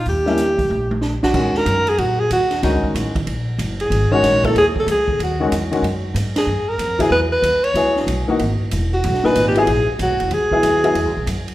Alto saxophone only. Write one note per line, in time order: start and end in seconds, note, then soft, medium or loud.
0.09 1.00 G4 medium
1.24 1.59 F#4 medium
1.58 1.91 A#4 loud
1.89 2.01 G#4 medium
1.99 2.22 F#4 medium
2.20 2.31 G#4 medium
2.33 2.62 F#4 loud
2.64 2.93 D#4 medium
3.81 4.14 G#4 medium
4.12 4.47 C#5 loud
4.45 4.56 A4 medium
4.58 4.66 G#4 loud
4.80 4.89 A4 medium
4.91 5.19 G#4 medium
5.23 5.51 F#4 medium
6.38 6.71 G#4 medium
6.69 7.03 A#4 medium
7.02 7.11 G#4 medium
7.12 7.21 B4 loud
7.32 7.66 B4 medium
7.64 7.96 C#5 medium
8.93 9.28 F#4 medium
9.26 9.47 B4 loud
9.48 9.60 G4 medium
9.59 9.89 G#4 loud
10.03 10.35 F#4 medium
10.34 11.29 G#4 medium